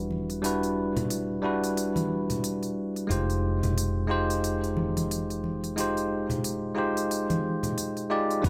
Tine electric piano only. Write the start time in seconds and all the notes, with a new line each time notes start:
Already playing: G3 D4 E4 F#4 B4
0.42 G3 D4 E4 F#4
0.46 B4
1.42 G3 D4 E4 F#4
1.46 B4
3.07 G#3 D#4 F4 G4
3.12 C5
4.07 G#3 D#4 F4 G4
4.11 C5
5.76 G#3 D#4 F4 G4
5.80 C5
6.75 G#3 D#4 F4 G4 C5
8.10 G#3 D#4 F4 G4 D5
8.42 G3 D4 E4 F#4 B4